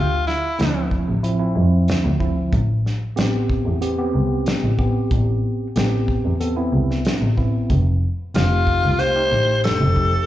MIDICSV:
0, 0, Header, 1, 5, 480
1, 0, Start_track
1, 0, Key_signature, 0, "minor"
1, 0, Tempo, 645856
1, 1879, Time_signature, 4, 2, 24, 8
1, 7627, End_track
2, 0, Start_track
2, 0, Title_t, "Tenor saxophone"
2, 0, Program_c, 0, 66
2, 0, Note_on_c, 0, 65, 85
2, 196, Note_off_c, 0, 65, 0
2, 200, Note_on_c, 0, 64, 72
2, 650, Note_off_c, 0, 64, 0
2, 6208, Note_on_c, 0, 65, 85
2, 6688, Note_on_c, 0, 72, 105
2, 6699, Note_off_c, 0, 65, 0
2, 7161, Note_off_c, 0, 72, 0
2, 7166, Note_on_c, 0, 69, 81
2, 7627, Note_off_c, 0, 69, 0
2, 7627, End_track
3, 0, Start_track
3, 0, Title_t, "Tine electric piano"
3, 0, Program_c, 1, 4
3, 440, Note_on_c, 1, 60, 65
3, 440, Note_on_c, 1, 64, 80
3, 441, Note_on_c, 1, 53, 77
3, 874, Note_off_c, 1, 60, 0
3, 874, Note_off_c, 1, 64, 0
3, 875, Note_off_c, 1, 53, 0
3, 916, Note_on_c, 1, 64, 97
3, 917, Note_on_c, 1, 60, 78
3, 918, Note_on_c, 1, 53, 92
3, 1026, Note_off_c, 1, 64, 0
3, 1027, Note_off_c, 1, 53, 0
3, 1027, Note_off_c, 1, 60, 0
3, 1036, Note_on_c, 1, 53, 77
3, 1037, Note_on_c, 1, 60, 78
3, 1037, Note_on_c, 1, 64, 86
3, 1580, Note_off_c, 1, 53, 0
3, 1581, Note_off_c, 1, 60, 0
3, 1581, Note_off_c, 1, 64, 0
3, 1632, Note_on_c, 1, 53, 82
3, 1633, Note_on_c, 1, 60, 69
3, 1635, Note_on_c, 1, 64, 92
3, 1876, Note_off_c, 1, 53, 0
3, 1876, Note_off_c, 1, 60, 0
3, 1877, Note_off_c, 1, 64, 0
3, 2350, Note_on_c, 1, 59, 96
3, 2350, Note_on_c, 1, 60, 83
3, 2350, Note_on_c, 1, 67, 95
3, 2789, Note_off_c, 1, 59, 0
3, 2789, Note_off_c, 1, 60, 0
3, 2789, Note_off_c, 1, 67, 0
3, 2834, Note_on_c, 1, 60, 86
3, 2836, Note_on_c, 1, 59, 92
3, 2836, Note_on_c, 1, 67, 99
3, 2945, Note_off_c, 1, 60, 0
3, 2946, Note_off_c, 1, 59, 0
3, 2946, Note_off_c, 1, 67, 0
3, 2959, Note_on_c, 1, 59, 87
3, 2960, Note_on_c, 1, 60, 75
3, 2962, Note_on_c, 1, 67, 89
3, 3502, Note_off_c, 1, 59, 0
3, 3503, Note_off_c, 1, 60, 0
3, 3504, Note_off_c, 1, 67, 0
3, 3556, Note_on_c, 1, 60, 74
3, 3558, Note_on_c, 1, 67, 89
3, 3559, Note_on_c, 1, 59, 88
3, 4210, Note_off_c, 1, 60, 0
3, 4211, Note_off_c, 1, 59, 0
3, 4211, Note_off_c, 1, 67, 0
3, 4279, Note_on_c, 1, 60, 82
3, 4280, Note_on_c, 1, 59, 92
3, 4281, Note_on_c, 1, 67, 99
3, 4714, Note_off_c, 1, 60, 0
3, 4715, Note_off_c, 1, 59, 0
3, 4715, Note_off_c, 1, 67, 0
3, 4758, Note_on_c, 1, 59, 85
3, 4759, Note_on_c, 1, 69, 87
3, 4761, Note_on_c, 1, 60, 79
3, 4868, Note_off_c, 1, 59, 0
3, 4868, Note_off_c, 1, 69, 0
3, 4869, Note_off_c, 1, 60, 0
3, 4878, Note_on_c, 1, 60, 72
3, 4879, Note_on_c, 1, 59, 80
3, 4880, Note_on_c, 1, 64, 95
3, 5422, Note_off_c, 1, 60, 0
3, 5423, Note_off_c, 1, 59, 0
3, 5423, Note_off_c, 1, 64, 0
3, 5478, Note_on_c, 1, 59, 75
3, 5478, Note_on_c, 1, 60, 69
3, 5481, Note_on_c, 1, 64, 88
3, 5720, Note_off_c, 1, 59, 0
3, 5720, Note_off_c, 1, 60, 0
3, 5721, Note_off_c, 1, 64, 0
3, 6205, Note_on_c, 1, 57, 73
3, 6206, Note_on_c, 1, 63, 63
3, 6206, Note_on_c, 1, 67, 82
3, 6638, Note_off_c, 1, 57, 0
3, 6638, Note_off_c, 1, 67, 0
3, 6639, Note_off_c, 1, 63, 0
3, 6682, Note_on_c, 1, 67, 82
3, 6683, Note_on_c, 1, 57, 74
3, 6683, Note_on_c, 1, 63, 69
3, 6791, Note_off_c, 1, 57, 0
3, 6791, Note_off_c, 1, 63, 0
3, 6791, Note_off_c, 1, 67, 0
3, 6807, Note_on_c, 1, 57, 68
3, 6807, Note_on_c, 1, 67, 83
3, 6808, Note_on_c, 1, 63, 68
3, 7348, Note_off_c, 1, 57, 0
3, 7348, Note_off_c, 1, 63, 0
3, 7348, Note_off_c, 1, 67, 0
3, 7406, Note_on_c, 1, 57, 69
3, 7406, Note_on_c, 1, 63, 62
3, 7406, Note_on_c, 1, 67, 77
3, 7627, Note_off_c, 1, 57, 0
3, 7627, Note_off_c, 1, 63, 0
3, 7627, Note_off_c, 1, 67, 0
3, 7627, End_track
4, 0, Start_track
4, 0, Title_t, "Double bass"
4, 0, Program_c, 2, 43
4, 0, Note_on_c, 2, 38, 83
4, 174, Note_off_c, 2, 38, 0
4, 438, Note_on_c, 2, 38, 79
4, 760, Note_off_c, 2, 38, 0
4, 802, Note_on_c, 2, 33, 75
4, 1122, Note_off_c, 2, 33, 0
4, 1157, Note_on_c, 2, 41, 86
4, 1265, Note_off_c, 2, 41, 0
4, 1399, Note_on_c, 2, 38, 32
4, 1510, Note_off_c, 2, 38, 0
4, 1520, Note_on_c, 2, 38, 91
4, 1734, Note_off_c, 2, 38, 0
4, 1877, Note_on_c, 2, 33, 97
4, 2093, Note_off_c, 2, 33, 0
4, 2359, Note_on_c, 2, 33, 81
4, 2681, Note_off_c, 2, 33, 0
4, 2718, Note_on_c, 2, 40, 73
4, 3040, Note_off_c, 2, 40, 0
4, 3078, Note_on_c, 2, 36, 80
4, 3186, Note_off_c, 2, 36, 0
4, 3318, Note_on_c, 2, 33, 29
4, 3430, Note_off_c, 2, 33, 0
4, 3438, Note_on_c, 2, 33, 87
4, 3653, Note_off_c, 2, 33, 0
4, 3800, Note_on_c, 2, 33, 93
4, 4014, Note_off_c, 2, 33, 0
4, 4282, Note_on_c, 2, 33, 76
4, 4603, Note_off_c, 2, 33, 0
4, 4639, Note_on_c, 2, 40, 72
4, 4962, Note_off_c, 2, 40, 0
4, 4997, Note_on_c, 2, 36, 84
4, 5106, Note_off_c, 2, 36, 0
4, 5242, Note_on_c, 2, 33, 29
4, 5353, Note_off_c, 2, 33, 0
4, 5361, Note_on_c, 2, 33, 84
4, 5575, Note_off_c, 2, 33, 0
4, 5723, Note_on_c, 2, 29, 90
4, 5937, Note_off_c, 2, 29, 0
4, 6202, Note_on_c, 2, 29, 80
4, 6524, Note_off_c, 2, 29, 0
4, 6564, Note_on_c, 2, 36, 76
4, 6885, Note_off_c, 2, 36, 0
4, 6923, Note_on_c, 2, 33, 83
4, 7030, Note_off_c, 2, 33, 0
4, 7162, Note_on_c, 2, 29, 31
4, 7274, Note_off_c, 2, 29, 0
4, 7284, Note_on_c, 2, 29, 89
4, 7498, Note_off_c, 2, 29, 0
4, 7627, End_track
5, 0, Start_track
5, 0, Title_t, "Drums"
5, 212, Note_on_c, 9, 38, 30
5, 286, Note_off_c, 9, 38, 0
5, 440, Note_on_c, 9, 42, 58
5, 452, Note_on_c, 9, 38, 95
5, 514, Note_off_c, 9, 42, 0
5, 526, Note_off_c, 9, 38, 0
5, 679, Note_on_c, 9, 36, 74
5, 753, Note_off_c, 9, 36, 0
5, 921, Note_on_c, 9, 42, 56
5, 995, Note_off_c, 9, 42, 0
5, 1398, Note_on_c, 9, 42, 54
5, 1409, Note_on_c, 9, 38, 99
5, 1472, Note_off_c, 9, 42, 0
5, 1484, Note_off_c, 9, 38, 0
5, 1638, Note_on_c, 9, 36, 74
5, 1712, Note_off_c, 9, 36, 0
5, 1877, Note_on_c, 9, 36, 102
5, 1877, Note_on_c, 9, 42, 51
5, 1951, Note_off_c, 9, 42, 0
5, 1952, Note_off_c, 9, 36, 0
5, 2128, Note_on_c, 9, 38, 31
5, 2202, Note_off_c, 9, 38, 0
5, 2357, Note_on_c, 9, 42, 58
5, 2369, Note_on_c, 9, 38, 109
5, 2431, Note_off_c, 9, 42, 0
5, 2443, Note_off_c, 9, 38, 0
5, 2598, Note_on_c, 9, 36, 74
5, 2672, Note_off_c, 9, 36, 0
5, 2838, Note_on_c, 9, 42, 64
5, 2912, Note_off_c, 9, 42, 0
5, 3316, Note_on_c, 9, 42, 56
5, 3328, Note_on_c, 9, 38, 105
5, 3390, Note_off_c, 9, 42, 0
5, 3402, Note_off_c, 9, 38, 0
5, 3558, Note_on_c, 9, 36, 79
5, 3632, Note_off_c, 9, 36, 0
5, 3797, Note_on_c, 9, 42, 57
5, 3798, Note_on_c, 9, 36, 103
5, 3872, Note_off_c, 9, 36, 0
5, 3872, Note_off_c, 9, 42, 0
5, 4279, Note_on_c, 9, 42, 59
5, 4291, Note_on_c, 9, 38, 99
5, 4354, Note_off_c, 9, 42, 0
5, 4365, Note_off_c, 9, 38, 0
5, 4520, Note_on_c, 9, 36, 69
5, 4594, Note_off_c, 9, 36, 0
5, 4761, Note_on_c, 9, 42, 55
5, 4836, Note_off_c, 9, 42, 0
5, 5133, Note_on_c, 9, 38, 28
5, 5207, Note_off_c, 9, 38, 0
5, 5239, Note_on_c, 9, 42, 55
5, 5251, Note_on_c, 9, 38, 101
5, 5314, Note_off_c, 9, 42, 0
5, 5325, Note_off_c, 9, 38, 0
5, 5481, Note_on_c, 9, 36, 73
5, 5556, Note_off_c, 9, 36, 0
5, 5722, Note_on_c, 9, 36, 99
5, 5722, Note_on_c, 9, 42, 53
5, 5796, Note_off_c, 9, 36, 0
5, 5797, Note_off_c, 9, 42, 0
5, 6202, Note_on_c, 9, 42, 58
5, 6214, Note_on_c, 9, 38, 107
5, 6277, Note_off_c, 9, 42, 0
5, 6289, Note_off_c, 9, 38, 0
5, 6443, Note_on_c, 9, 36, 71
5, 6517, Note_off_c, 9, 36, 0
5, 6684, Note_on_c, 9, 42, 58
5, 6758, Note_off_c, 9, 42, 0
5, 7163, Note_on_c, 9, 42, 59
5, 7175, Note_on_c, 9, 38, 95
5, 7237, Note_off_c, 9, 42, 0
5, 7249, Note_off_c, 9, 38, 0
5, 7403, Note_on_c, 9, 36, 75
5, 7478, Note_off_c, 9, 36, 0
5, 7627, End_track
0, 0, End_of_file